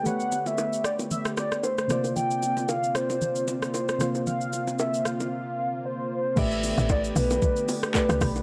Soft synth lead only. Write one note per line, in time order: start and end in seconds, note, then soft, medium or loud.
0.06 0.48 F#5 loud
0.47 0.84 E5 loud
0.85 0.97 D5 medium
1.11 1.23 E5 loud
1.38 1.62 D5 medium
1.64 2.13 C5 medium
2.16 2.70 G5 loud
2.69 2.97 F5 loud
2.95 3.73 C5 medium
3.74 4.23 C5 medium
4.27 4.76 F5 loud
4.79 5.07 E5 medium
5.06 5.85 F5 medium
5.85 6.39 C5 medium
6.38 6.90 E5 loud
6.91 7.02 D5 loud
7.17 7.91 B4 loud
7.96 8.43 B4 medium